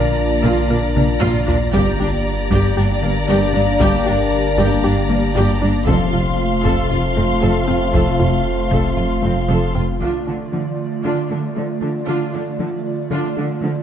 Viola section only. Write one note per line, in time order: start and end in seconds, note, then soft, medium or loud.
0.45 0.69 F4 medium
0.70 0.78 D4 medium
0.96 1.04 A#3 medium
1.22 1.46 F4 medium
1.48 1.56 D4 medium
1.74 1.98 G4 medium
2.00 2.08 D4 medium
2.52 2.76 G4 medium
2.77 2.85 D4 medium
3.03 3.11 A#3 medium
3.28 3.53 G4 medium
3.55 3.63 D4 medium
3.80 4.05 G4 medium
4.06 4.14 D4 soft
4.58 4.82 G4 medium
4.84 4.92 D4 medium
5.11 5.19 A#3 medium
5.36 5.60 G4 medium
5.61 5.69 D4 medium
5.87 6.12 A4 medium
6.12 6.20 F4 soft
6.65 6.89 A4 medium
6.91 6.99 F4 soft
7.16 7.24 C4 soft
7.42 7.66 A4 medium
7.67 7.75 F4 soft
7.94 8.18 A4 medium
8.20 8.28 F4 soft
8.72 8.96 A4 soft
8.98 9.06 F4 soft
9.24 9.32 C4 soft
9.50 9.74 A4 soft
9.75 9.83 F4 soft
10.01 10.25 D4 soft
10.01 10.26 F4 soft
10.28 10.36 A3 soft
10.28 10.36 D4 soft
10.53 10.61 F3 soft
10.53 10.61 A3 soft
11.05 11.29 D4 soft
11.05 11.29 F4 soft
11.31 11.39 A3 soft
11.31 11.39 D4 soft
11.56 11.64 F3 soft
11.56 11.64 A3 soft
11.82 11.90 A3 soft
11.82 11.90 D4 soft
12.08 12.32 D4 soft
12.08 12.32 F4 medium
12.34 12.43 A3 soft
12.34 12.42 D4 soft
12.61 12.69 F3 soft
12.61 12.69 A3 soft
13.12 13.36 D4 soft
13.12 13.36 F4 medium
13.38 13.46 A3 soft
13.38 13.46 D4 soft
13.64 13.72 F3 soft
13.64 13.72 A3 soft